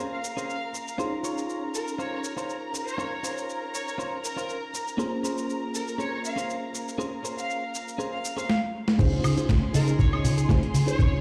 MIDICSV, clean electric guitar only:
0, 0, Header, 1, 3, 480
1, 0, Start_track
1, 0, Key_signature, -5, "major"
1, 0, Tempo, 500000
1, 952, Time_signature, 4, 2, 24, 8
1, 10760, End_track
2, 0, Start_track
2, 0, Title_t, "Clean electric guitar"
2, 0, Program_c, 0, 27
2, 0, Note_on_c, 0, 61, 86
2, 0, Note_on_c, 0, 68, 78
2, 0, Note_on_c, 0, 70, 69
2, 0, Note_on_c, 0, 72, 94
2, 171, Note_off_c, 0, 61, 0
2, 174, Note_off_c, 0, 68, 0
2, 176, Note_off_c, 0, 70, 0
2, 177, Note_off_c, 0, 72, 0
2, 352, Note_on_c, 0, 61, 82
2, 356, Note_on_c, 0, 68, 68
2, 358, Note_on_c, 0, 70, 77
2, 366, Note_on_c, 0, 72, 73
2, 532, Note_off_c, 0, 61, 0
2, 533, Note_off_c, 0, 68, 0
2, 536, Note_off_c, 0, 70, 0
2, 537, Note_off_c, 0, 72, 0
2, 943, Note_on_c, 0, 61, 107
2, 947, Note_on_c, 0, 65, 96
2, 954, Note_on_c, 0, 72, 111
2, 1075, Note_off_c, 0, 61, 0
2, 1077, Note_off_c, 0, 65, 0
2, 1081, Note_off_c, 0, 72, 0
2, 1182, Note_on_c, 0, 61, 76
2, 1189, Note_on_c, 0, 65, 72
2, 1195, Note_on_c, 0, 73, 86
2, 1555, Note_off_c, 0, 61, 0
2, 1558, Note_off_c, 0, 65, 0
2, 1561, Note_off_c, 0, 73, 0
2, 1904, Note_on_c, 0, 61, 81
2, 1910, Note_on_c, 0, 65, 75
2, 1915, Note_on_c, 0, 72, 89
2, 2092, Note_off_c, 0, 61, 0
2, 2095, Note_off_c, 0, 65, 0
2, 2097, Note_off_c, 0, 72, 0
2, 2270, Note_on_c, 0, 61, 78
2, 2275, Note_on_c, 0, 65, 77
2, 2282, Note_on_c, 0, 72, 90
2, 2451, Note_off_c, 0, 61, 0
2, 2454, Note_off_c, 0, 65, 0
2, 2457, Note_off_c, 0, 72, 0
2, 2859, Note_on_c, 0, 61, 102
2, 2864, Note_on_c, 0, 65, 96
2, 2870, Note_on_c, 0, 72, 122
2, 2993, Note_off_c, 0, 61, 0
2, 2996, Note_off_c, 0, 65, 0
2, 2999, Note_off_c, 0, 72, 0
2, 3101, Note_on_c, 0, 61, 85
2, 3107, Note_on_c, 0, 65, 74
2, 3112, Note_on_c, 0, 72, 90
2, 3474, Note_off_c, 0, 61, 0
2, 3477, Note_off_c, 0, 65, 0
2, 3480, Note_off_c, 0, 72, 0
2, 3821, Note_on_c, 0, 61, 83
2, 3827, Note_on_c, 0, 65, 77
2, 3833, Note_on_c, 0, 72, 93
2, 4010, Note_off_c, 0, 61, 0
2, 4013, Note_off_c, 0, 65, 0
2, 4016, Note_off_c, 0, 72, 0
2, 4189, Note_on_c, 0, 61, 81
2, 4195, Note_on_c, 0, 65, 78
2, 4200, Note_on_c, 0, 72, 93
2, 4370, Note_off_c, 0, 61, 0
2, 4373, Note_off_c, 0, 65, 0
2, 4376, Note_off_c, 0, 72, 0
2, 4781, Note_on_c, 0, 61, 111
2, 4785, Note_on_c, 0, 68, 96
2, 4789, Note_on_c, 0, 70, 103
2, 4794, Note_on_c, 0, 72, 116
2, 4914, Note_off_c, 0, 61, 0
2, 4916, Note_off_c, 0, 68, 0
2, 4918, Note_off_c, 0, 70, 0
2, 4920, Note_off_c, 0, 72, 0
2, 5023, Note_on_c, 0, 61, 83
2, 5032, Note_on_c, 0, 70, 76
2, 5033, Note_on_c, 0, 68, 66
2, 5037, Note_on_c, 0, 72, 87
2, 5396, Note_off_c, 0, 61, 0
2, 5398, Note_off_c, 0, 68, 0
2, 5400, Note_off_c, 0, 70, 0
2, 5402, Note_off_c, 0, 72, 0
2, 5743, Note_on_c, 0, 61, 84
2, 5747, Note_on_c, 0, 68, 80
2, 5752, Note_on_c, 0, 70, 77
2, 5759, Note_on_c, 0, 72, 81
2, 5931, Note_off_c, 0, 61, 0
2, 5933, Note_off_c, 0, 68, 0
2, 5936, Note_off_c, 0, 70, 0
2, 5937, Note_off_c, 0, 72, 0
2, 6108, Note_on_c, 0, 61, 83
2, 6116, Note_on_c, 0, 68, 67
2, 6118, Note_on_c, 0, 70, 75
2, 6122, Note_on_c, 0, 72, 92
2, 6291, Note_off_c, 0, 61, 0
2, 6293, Note_off_c, 0, 68, 0
2, 6295, Note_off_c, 0, 70, 0
2, 6297, Note_off_c, 0, 72, 0
2, 6703, Note_on_c, 0, 61, 111
2, 6707, Note_on_c, 0, 68, 94
2, 6709, Note_on_c, 0, 70, 92
2, 6715, Note_on_c, 0, 72, 105
2, 6835, Note_off_c, 0, 61, 0
2, 6837, Note_off_c, 0, 68, 0
2, 6839, Note_off_c, 0, 70, 0
2, 6840, Note_off_c, 0, 72, 0
2, 6940, Note_on_c, 0, 61, 83
2, 6948, Note_on_c, 0, 68, 64
2, 6949, Note_on_c, 0, 70, 77
2, 6957, Note_on_c, 0, 72, 77
2, 7314, Note_off_c, 0, 61, 0
2, 7316, Note_off_c, 0, 68, 0
2, 7319, Note_off_c, 0, 70, 0
2, 7321, Note_off_c, 0, 72, 0
2, 7662, Note_on_c, 0, 61, 86
2, 7667, Note_on_c, 0, 68, 81
2, 7669, Note_on_c, 0, 70, 83
2, 7677, Note_on_c, 0, 72, 79
2, 7851, Note_off_c, 0, 61, 0
2, 7853, Note_off_c, 0, 68, 0
2, 7855, Note_off_c, 0, 70, 0
2, 7857, Note_off_c, 0, 72, 0
2, 8030, Note_on_c, 0, 61, 80
2, 8033, Note_on_c, 0, 68, 70
2, 8043, Note_on_c, 0, 70, 69
2, 8043, Note_on_c, 0, 72, 93
2, 8147, Note_off_c, 0, 61, 0
2, 8150, Note_off_c, 0, 68, 0
2, 8151, Note_off_c, 0, 70, 0
2, 8154, Note_off_c, 0, 72, 0
2, 10760, End_track
3, 0, Start_track
3, 0, Title_t, "Muted clean electric guitar strokes"
3, 700, Note_on_c, 9, 29, 30
3, 796, Note_off_c, 9, 29, 0
3, 2622, Note_on_c, 9, 29, 29
3, 2718, Note_off_c, 9, 29, 0
3, 4546, Note_on_c, 9, 29, 32
3, 4642, Note_off_c, 9, 29, 0
3, 6462, Note_on_c, 9, 29, 30
3, 6558, Note_off_c, 9, 29, 0
3, 10760, End_track
0, 0, End_of_file